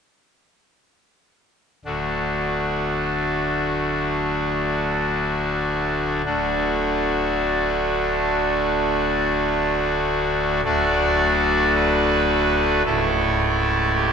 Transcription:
pipe organ
1.85 D1 D2 A3 D4 F#4
6.25 D1 D2 A3 D4 F#4
10.65 D1 D2 A3 D4 F#4 D5
11.75 B4
12.86 C#1 C#2 A3 E4 A4
13.96 G4

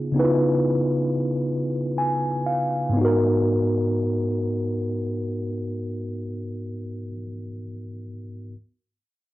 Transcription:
tine electric piano
Already playing: B3 D#4 F4 G#4
0.12 C#3 B3 D#4
0.18 E4 B4
0.24 F4
1.98 G#5
2.46 F5
2.89 G#2 B3
2.97 D#4 F#4
3.05 A#4

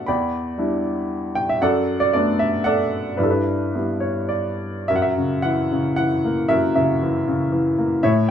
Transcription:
upright piano
0.07 E2 D5 G5 B5
0.58 G3 D4 E4
1.35 G5
1.49 E5
1.61 F#2 A4 D5 F#5
2.00 D5
2.13 A3 B3 D4 D5
2.39 E5
2.64 A4 D5 F#5
3.17 G2 D4 E4 B4
3.23 A4
3.30 D4 E4 B4
3.75 G3 B3 E4
4.00 C#5
4.29 D5
4.88 F#2 A#4 E5
4.96 F#5
5.02 E5
5.17 C#3
5.42 E3 F#5
5.72 C#3
5.96 E3 F#5
6.25 A#3
6.49 F#2 A#4 E5
6.75 C#3 A#4 E5
7.02 E3
7.27 C#3
7.52 E3
7.78 A#3
8.03 A2 C#5 E5

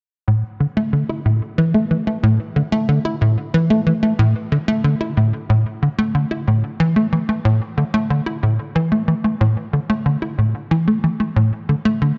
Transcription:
analog synth bass
0.28 A2
0.60 D3
0.77 A3
0.93 D3
1.09 E4
1.25 A2
1.58 E3
1.74 A3
1.91 E3
2.07 A3
2.23 A2
2.56 D3
2.72 A3
2.89 D3
3.05 E4
3.21 A2
3.54 E3
3.70 A3
3.86 E3
4.03 A3
4.19 A2
4.52 D3
4.68 A3
4.84 D3
5.01 E4
5.17 A2
5.50 A2
5.82 D3
5.98 A3
6.15 D3
6.31 E4
6.48 A2
6.80 E3
6.96 A3
7.12 E3
7.29 A3
7.45 A2
7.77 D3
7.94 A3
8.10 D3
8.26 E4
8.43 A2
8.76 E3
8.92 A3
9.08 E3
9.24 A3
9.41 A2
9.73 D3
9.90 A3
10.06 D3
10.22 E4
10.38 A2
10.71 E3
10.88 A3
11.04 E3
11.20 A3
11.36 A2
11.69 D3
11.85 A3
12.02 D3

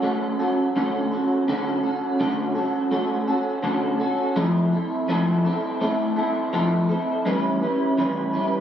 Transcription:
clean electric guitar
0.02 A3 C#4 F#4 A4
0.39 C#4 F#4 A4
0.76 D3 A3 C#4 F#4 A4
1.12 C#4 F#4 A4
1.48 D3 A3 C#4 F#4 A4
1.83 C#4 F#4 A4
2.20 D3 A3 C#4 F#4 A4
2.55 C#4 F#4 A4
2.91 A3 C#4 F#4 A4
3.27 C#4 F#4 A4
3.63 D3 A3 C#4 F#4 A4
3.99 C#4 F#4 A4
4.36 F3 A3 C4 E4 A4
4.72 C4 E4 A4
5.08 F3 A3 C4 E4 A4
5.45 C4 E4 A4
5.81 A3 C4 E4 A4
6.16 C4 E4 A4
6.53 F3 A3 C4 E4 A4
6.89 C4 E4 A4
7.25 A2 E3 G3 C#4 E4 B4
7.62 G3 C#4 E4 B4
7.98 A2 E3 G3 C#4 E4 B4
8.33 G3 C#4 E4 B4

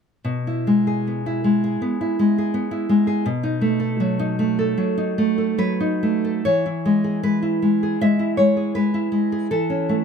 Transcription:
nylon-string guitar
0.24 B2
0.47 E4
0.67 G#3
0.87 G#4
1.07 B3
1.26 E4
1.44 G#3
1.64 G#4
1.82 B3
2.01 E4
2.19 G#3
2.38 G#4
2.54 B3
2.71 E4
2.89 G#3
3.07 G#4
3.26 B2
3.43 D#4
3.61 A3
3.80 A4
4.00 F#3
4.19 D#4
4.39 A3
4.59 A4
4.78 F#3
4.98 D#4
5.18 A3
5.38 A4
5.58 F#3 B4
5.80 D#4
6.03 A3
6.24 A4
6.45 E3 C#5
6.66 E4
6.86 G#3
7.04 G#4
7.23 G#3 B4
7.42 E4
7.62 G#3
7.83 G#4
8.01 G#3 E5
8.19 E4
8.37 G#3 C#5
8.57 G#4
8.75 G#3 B4
8.94 E4
9.12 G#3
9.32 G#4
9.51 E3 A4
9.70 C#4
9.89 A3

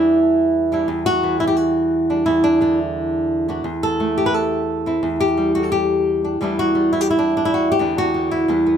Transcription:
nylon-string guitar
Already playing: E2 E3 G3 D4 E4
0.72 G3 D4 E4
0.88 E2
1.06 F#4
1.23 E3
1.40 E4
1.47 G4
1.57 F#4
2.10 G3 D4
2.26 E2 E4
2.44 D4
2.61 D3 D4
3.48 B3 D4 F#4
3.64 E2
3.83 A4
4.00 A3
4.18 G4
4.26 B4
4.34 A4
4.86 C4 E4
5.03 E2
5.20 G4
5.37 G3
5.55 F#4
5.63 A4
5.72 G4
6.25 D4
6.41 E2 G3 B3 D4 E4
6.59 F#4
6.75 G3
6.93 E4
7.01 G4
7.10 E4
7.19 D4
7.37 D4
7.45 E4
7.54 F#4
7.72 G4
7.79 E2 D3 B3 D4
7.98 F#4
8.14 D3
8.31 E4
8.48 E2 G3 B3
8.66 B3

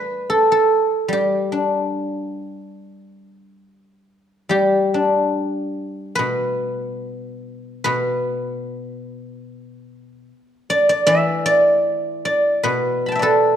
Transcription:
guzheng
Already playing: G3 G4 A4 B4 D5
0.30 A4
0.52 A4
1.08 G3
1.13 G4
1.52 D4
4.49 G3 G4
4.94 D4
6.15 B2 B4
7.84 B2 B4
10.70 D5
10.89 D5
11.07 E3 E5
11.46 D5
12.25 D5
12.63 B2 B4
13.06 A5 B5
13.12 E5 G5
13.19 A4 B4 D5

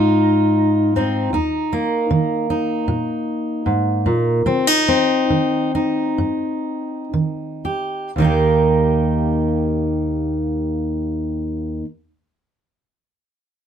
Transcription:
steel-string acoustic guitar
Already playing: G#2 D#4 F4
0.96 C4 D#4
1.33 D#2 D#4
1.73 A#3
2.11 D#3
2.50 D#4
2.88 A#2
3.66 G#2
4.06 A#2
4.46 C3 C4
4.67 D#4
4.88 C4
5.30 D#3
5.75 D#4
6.18 G2
7.14 D#3
7.65 G4
8.16 D#2 D#3
8.20 A#3 D#4
8.24 G4

